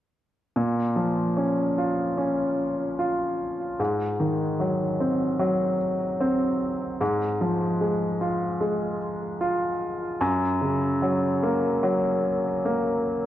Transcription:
0.56 A#2
0.96 F3
1.37 C#4
1.78 F4
2.18 C#4
2.99 F4
3.80 G#2
4.20 D#3
4.60 F#3
5.00 C4
5.39 F#3
6.20 C4
7.01 G#2
7.41 F3
7.81 G#3
8.21 F4
8.61 G#3
9.41 F4
10.21 F#2
10.61 C#3
11.02 F#3
11.43 A#3
11.83 F#3
12.65 A#3

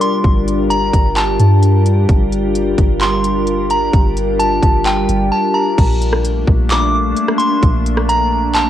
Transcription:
Already playing: G3 D4 F4 G4 A#4
0.01 C6, closed hi-hat
0.24 G1, kick, closed hi-hat
0.48 closed hi-hat
0.70 A#5, closed hi-hat
0.93 G1, kick, closed hi-hat
1.16 A5, clap, closed hi-hat
1.39 G2, closed hi-hat
1.62 closed hi-hat
1.86 closed hi-hat
2.09 G1, kick, closed hi-hat
2.32 closed hi-hat
2.55 closed hi-hat
2.78 G1, kick, closed hi-hat
3.01 C6, clap, closed hi-hat
3.24 closed hi-hat
3.47 closed hi-hat
3.70 A#5, closed hi-hat
3.93 G1, kick, closed hi-hat
4.17 closed hi-hat
4.39 A5, closed hi-hat
4.63 G1, kick, closed hi-hat
4.86 G5, clap, closed hi-hat
5.09 G1, closed hi-hat
5.32 A5
5.54 A#5
5.78 A#1 A3 A#3 D4, kick, closed hi-hat, crash
6.02 closed hi-hat
6.13 cross-stick
6.25 closed hi-hat
6.47 A#1, kick
6.70 D6, clap, closed hi-hat
7.17 closed hi-hat
7.28 cross-stick
7.38 C6, closed hi-hat
7.63 A#1, kick, closed hi-hat
7.86 closed hi-hat
7.97 cross-stick
8.09 A#5, closed hi-hat
8.55 A5, clap, closed hi-hat

